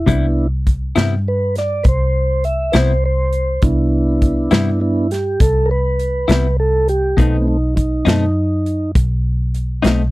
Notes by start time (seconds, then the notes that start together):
0.06 C2 C3 G3 B3 D4 E4, kick, closed hi-hat
0.67 kick, closed hi-hat
0.96 G2 C3 G3 B3 E4, snare, closed hi-hat
1.28 B4
1.55 D5, snare, closed hi-hat
1.83 C2 B4, kick, closed hi-hat
1.88 C5
2.44 E5, closed hi-hat
2.72 C2 C3 G3 B3 E4 B4, snare, closed hi-hat
2.76 C5
3.06 C5
3.33 closed hi-hat
3.62 C2 B3 D4 E4, kick, closed hi-hat
4.22 kick, closed hi-hat
4.51 G2 C3 G3 B3 E4, snare, closed hi-hat
4.80 B3 D4 E4
5.11 G4, snare, closed hi-hat
5.40 C2 A4, kick, closed hi-hat
5.66 A#4
5.71 B4
5.99 closed hi-hat
6.28 C2 C3 G3 B3 E4, snare, closed hi-hat
6.60 A4
6.88 G4, closed hi-hat
7.17 B1 B2 A3 B3 C4 D#4, kick, closed hi-hat
7.48 D#4
7.76 D#4, kick, closed hi-hat
8.05 F#2 B2 A3 C4 D#4, snare, closed hi-hat
8.66 closed hi-hat
8.95 B1, kick, closed hi-hat
9.55 closed hi-hat
9.82 B1 B2 A3 C4 D#4, snare, closed hi-hat